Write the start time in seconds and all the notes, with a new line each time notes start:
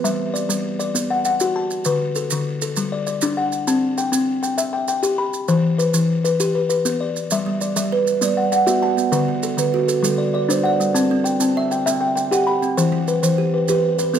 Already playing: E3 B4
0.04 G3 E5, maracas
0.34 D5, maracas
0.49 G3, maracas
0.79 D5, maracas
0.95 B3, maracas
1.10 F#5
1.25 F#5, maracas
1.40 F#4, maracas
1.56 A5
1.70 maracas
1.85 D3 B4, maracas
2.15 A4, maracas
2.30 D3, maracas
2.62 A4, maracas
2.76 G3, maracas
2.92 D5
3.07 D5, maracas
3.21 D4, maracas
3.37 F#5
3.52 maracas
3.67 C4 A5, maracas
3.98 G5, maracas
4.12 C4, maracas
4.43 G5, maracas
4.58 E5, maracas
4.73 G5
4.88 G5, maracas
5.03 G4, maracas
5.18 B5
5.33 maracas
5.48 E3 C5, maracas
5.79 B4, maracas
5.94 E3, maracas
6.24 B4, maracas
6.40 G4, maracas
6.55 B4
6.69 B4, maracas
6.85 B3, maracas
7.01 D5
7.16 maracas
7.31 G3 E5, maracas
7.46 G3
7.61 D5, maracas
7.76 G3 E5, maracas
7.92 B4
8.07 maracas
8.21 G3 B3 D5, maracas
8.37 F#5
8.52 F#5, maracas
8.67 B3 F#4 E5, maracas
8.82 F#5 A5
8.97 B3, maracas
9.12 D3 B4, maracas
9.28 D3
9.43 A4, maracas
9.57 D3 B4, maracas
9.74 F#4
9.88 A4, maracas
10.03 D3 G3 A4, maracas
10.18 D5
10.34 D5
10.49 G3 D4 C5, maracas
10.63 D5 F#5
10.80 G3, maracas
10.94 C4 A5, maracas
11.11 C4
11.24 G5, maracas
11.40 C4 A5, maracas
11.57 E5
11.71 G5, maracas
11.86 C4 E5 G5, maracas
12.01 G5
12.15 G5, maracas
12.31 G4 F#5, maracas
12.47 G5 B5
12.62 C4, maracas
12.77 E3 C5, maracas
12.92 E3
13.08 B4, maracas
13.23 E3 C5, maracas
13.38 G4
13.54 B4
13.68 E3 G4 B4, maracas
13.99 B4, maracas
14.14 B3 A4, maracas